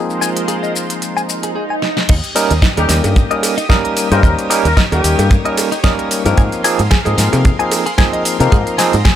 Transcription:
Already playing: F3 G#3 A#3 C4 D#4 F4 G#4 A#4 C5
0.10 shaker
0.21 G#5, shaker
0.37 closed hi-hat, shaker
0.48 G#4, closed hi-hat, shaker
0.63 D#5, shaker
0.76 shaker
0.90 closed hi-hat, shaker
1.02 closed hi-hat, swell, shaker
1.17 G#5, shaker
1.29 shaker
1.43 G#4, closed hi-hat, shaker
1.55 G#4
1.70 G#5
1.82 snare
1.97 snare
2.09 D#2 D#4 G4 D#5 D#6, kick, closed hi-hat, crash, shaker
2.24 closed hi-hat, shaker
2.35 G3 A#3 C#4 D#4 A#4 D#5, open hi-hat, ride, shaker
2.51 D#2, closed hi-hat, shaker
2.62 D#4, kick, snare, closed hi-hat, shaker
2.77 D#2 G3 A#3 C#4 D#4 G4 A#4, closed hi-hat, cowbell, shaker
2.89 D#2 G4, snare, open hi-hat, ride, shaker
3.04 G2, closed hi-hat, cowbell, shaker
3.16 kick, closed hi-hat, shaker
3.30 G3 A#3 C#4 D#4 A#4 D#5, closed hi-hat
3.43 open hi-hat, ride, cowbell, shaker
3.58 D#4, closed hi-hat, shaker
3.69 G3 A#3 C#4 D#4 A#4 D#5, kick, snare, closed hi-hat, shaker
3.84 A#4, closed hi-hat
3.97 open hi-hat, ride, shaker
4.11 G2 G3 A#3 C#4 D#4 A#4 C5, closed hi-hat, cowbell, shaker
4.23 D#2 D#4 A#4 C#5, kick, closed hi-hat, shaker
4.39 closed hi-hat, shaker
4.50 G3 A#3 C#4 D#4 A#4 D#5, open hi-hat, ride, shaker
4.65 D#2 A#4, closed hi-hat, shaker
4.77 D#4, kick, snare, closed hi-hat, shaker
4.91 D#2 G3 A#3 C#4 D#4 G4 A#4, closed hi-hat, cowbell, shaker
5.04 D#2, open hi-hat, ride, shaker
5.19 G2, closed hi-hat, cowbell, shaker
5.31 kick, closed hi-hat, shaker
5.45 G3 A#3 C#4 D#4 A#4 D#5, closed hi-hat
5.57 open hi-hat, ride, cowbell, shaker
5.72 D#4, closed hi-hat, shaker
5.84 G3 A#3 C#4 D#4 A#4 D#5, kick, snare, closed hi-hat, shaker
5.99 A#4, closed hi-hat
6.11 open hi-hat, ride, shaker
6.25 G2 F3 A#3 C4 D#4 A#4, closed hi-hat, cowbell, shaker
6.37 G#2 G#4 A#4 F5 C6, kick, closed hi-hat, shaker
6.52 closed hi-hat, shaker
6.64 F3 A#3 C4 D#4 G#4 G#5, open hi-hat, ride, shaker
6.79 G#2, closed hi-hat, shaker
6.91 G#4, kick, snare, closed hi-hat, shaker
7.05 G#2 F3 A#3 C4 D#4 G#4 D#5, closed hi-hat, cowbell, shaker
7.18 G#2, snare, open hi-hat, ride, shaker
7.33 C3, closed hi-hat, cowbell, shaker
7.45 kick, closed hi-hat, shaker
7.59 F3 A#3 C4 D#4 G#4 G#5, closed hi-hat
7.71 open hi-hat, ride, cowbell, shaker
7.86 G#4, closed hi-hat, shaker
7.98 F3 A#3 C4 D#4 G#4 G#5, kick, snare, closed hi-hat, shaker
8.13 D#5, closed hi-hat
8.25 open hi-hat, ride, shaker
8.40 C3 F3 A#3 C4 D#4 A#4, closed hi-hat, cowbell, shaker
8.52 G#2 G#4 D#5, kick, closed hi-hat, shaker
8.67 closed hi-hat, shaker
8.78 F3 A#3 C4 D#4 G#4 G#5, snare, open hi-hat, ride, shaker
8.93 G#2, closed hi-hat, shaker
9.05 G#4, kick, snare, closed hi-hat, shaker

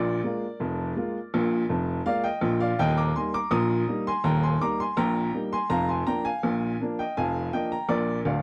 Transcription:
Already playing: A#1 A#2 A#4 D5
0.24 G#3 A#3 F4
0.60 F1 F2
0.97 G#3 A#3 F4
1.34 A#1 A#2
1.69 F1 F2
2.06 G#3 A#3 F4 D5 F5
2.24 D#5 G5
2.41 A#1 A#2
2.60 D5 F5
2.79 D#1 D#2 D#5 G5
2.98 A#5 D6
3.16 G3 A#3 D#4 G#5 C6
3.34 A#5 D6
3.51 A#1 A#2 A#5 D#6
3.88 G3 A#3 D#4
4.07 G#5 C6
4.24 D#1 D#2 G5 A#5
4.43 G#5 C6
4.61 G3 A#3 D#4 A#5 D6
4.80 G#5 C6
4.97 A#1 A#2 G5 A#5
5.34 G3 A#3 D#4
5.53 G#5 C6
5.69 F1 F2 F5 A#5
5.89 G#5 C6
6.07 F3 A#3 D4 G5 A#5
6.25 F5 G#5
6.43 A#1 A#2
6.80 F3 A#3 D4
6.99 D#5 G5
7.17 F1 F2 F5 G#5
7.53 F3 A#3 D4 D#5 G5
7.72 G5 A#5
7.89 A#1 A#2 A#4 D5
8.25 D1 D2 D5 F5

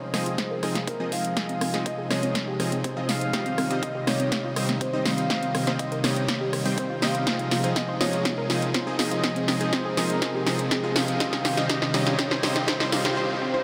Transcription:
Already playing: C3 F3 G#3 C4 D#4 G#4 C#5 D#5
0.02 C5
0.14 F3 C4 D#4 F4 G#4 C5 D#5, cross-stick, snare, open hi-hat
0.26 F4, closed hi-hat
0.38 kick, snare, closed hi-hat
0.51 A#4
0.63 F3 C4 D#4 F4 G#4 D#5, cross-stick, open hi-hat
0.75 F4, snare, closed hi-hat
0.87 F4 A#4, kick, closed hi-hat
1.00 F3 C4 D#4 G#4 D#5
1.12 F4 F5, open hi-hat
1.25 F4, closed hi-hat
1.37 F3 C4 D#4 G#4 D#5, kick, snare, closed hi-hat
1.49 C4, closed hi-hat
1.61 C4, cross-stick, open hi-hat
1.74 F3 C4 D#4 G#4 D#5, snare, closed hi-hat
1.86 C4 D#5, kick, closed hi-hat
1.98 G#4
2.10 F3 G#3 C4 D#4 G#4 C#5 D#5, cross-stick, snare, open hi-hat
2.23 C4, closed hi-hat
2.35 C4, kick, snare, closed hi-hat
2.48 G4
2.60 F3 C4 D#4 G#4 D#5, cross-stick, open hi-hat
2.72 C4, closed hi-hat
2.84 C4 C5, kick, closed hi-hat
2.97 F3 C4 D#4 F4 G#4 D#5
3.09 C4 F5, snare, open hi-hat
3.21 C4, closed hi-hat
3.33 D#3 G3 C4 D#4 G4 C5 D#5, kick, snare, closed hi-hat
3.46 C4, closed hi-hat
3.58 C4, cross-stick, open hi-hat
3.70 G3 C4 D#4 G4 C5 D#5, closed hi-hat
3.83 C4 D#5, kick, closed hi-hat
3.95 G4
4.07 G3 C4 D#4 G4 C#5 D#5, cross-stick, snare, open hi-hat
4.20 C4, closed hi-hat
4.32 C4, kick, snare, closed hi-hat
4.44 F4
4.56 G3 C4 D#4 C5 D#5, cross-stick, open hi-hat
4.69 C4, snare, closed hi-hat
4.81 C4 C5, kick, closed hi-hat
4.93 G3 C4 D#4 C5 D#5
5.05 C4 F5, snare, open hi-hat
5.18 C4, closed hi-hat
5.30 G3 C4 D#4 C5 D#5, kick, snare, closed hi-hat
5.43 C4, closed hi-hat
5.55 C4, cross-stick, open hi-hat
5.67 G3 C4 D#4 C5 D#5, snare, closed hi-hat
5.79 C4 D#5, kick, closed hi-hat
5.92 A#4, closed hi-hat
6.04 G3 C4 D#4 G4 C#5 D#5, cross-stick, snare, open hi-hat
6.16 C4, closed hi-hat
6.28 C4, kick, snare, closed hi-hat
6.41 G4
6.53 C4, cross-stick, open hi-hat
6.66 G3 C4 D#4 C5 G5, open hi-hat
6.78 C4 C5, kick, closed hi-hat
6.90 F4
7.02 G3 C4 D#4 C5 D#5 F5, snare, open hi-hat
7.15 C4, closed hi-hat
7.27 F3 G#3 C4 D#4 G#4 C5 D#5, kick, snare, closed hi-hat, riser
7.39 F4, closed hi-hat
7.51 F4, snare, open hi-hat
7.64 F3 C4 D#4 G#4 C5 D#5, closed hi-hat
7.76 F4 D#5, kick, snare, closed hi-hat
7.89 C5
8.01 F3 G#3 D#4 F4 G#4 C#5 D#5, snare, open hi-hat
8.13 F4, closed hi-hat
8.25 F4, kick, snare, closed hi-hat
8.38 A#4
8.50 F3 C4 D#4 F4 G#4 D#5, snare, open hi-hat
8.62 F4, closed hi-hat
8.74 F4 C5, kick, snare, closed hi-hat
8.87 F3 C4 D#4 G#4 D#5
8.99 F4 D#5, snare, open hi-hat
9.11 F4, closed hi-hat
9.24 F3 C4 D#4 G#4 D#5, kick, snare, closed hi-hat
9.36 C4, closed hi-hat
9.48 C4, snare, open hi-hat
9.61 F3 C4 D#4 G#4 D#5, closed hi-hat
9.73 C4 C5, kick, snare, closed hi-hat
9.85 G#4
9.97 F3 C4 D#4 G#4 A#4 D#5, snare, open hi-hat
10.10 C4, closed hi-hat
10.22 C4, kick, snare, closed hi-hat
10.35 G4
10.46 F3 C4 D#4 G#4 D#5, snare, open hi-hat
10.59 C4, closed hi-hat
10.71 C4 G#4, kick, snare, closed hi-hat
10.84 F3 C4 D#4 F4 G#4 D#5
10.96 C4 F5, snare, open hi-hat
11.08 C4, closed hi-hat
11.20 C3 D#3 G3 C4 D#4 G4 C5 D#5, kick, snare, closed hi-hat
11.33 G4, snare, closed hi-hat
11.45 G4, snare, open hi-hat
11.57 G3 C4 D#4 C5 D#5, snare, closed hi-hat
11.69 G4 D#5, kick, snare, closed hi-hat
11.82 D#5, snare
11.94 G3 D#4 G4 C#5 D#5, snare, open hi-hat
12.07 G4, snare, closed hi-hat
12.19 G4, kick, snare, closed hi-hat
12.31 C5, snare
12.43 G3 C4 D#4 G4 C5 D#5, snare, open hi-hat
12.56 G4, snare, closed hi-hat
12.68 G4 C5, kick, snare, closed hi-hat
12.80 G3 C4 D#4 C5 D#5, snare
12.92 G4 F5, snare, open hi-hat
13.05 G4, snare, closed hi-hat
13.17 C5
13.30 C4
13.42 C4
13.54 C5

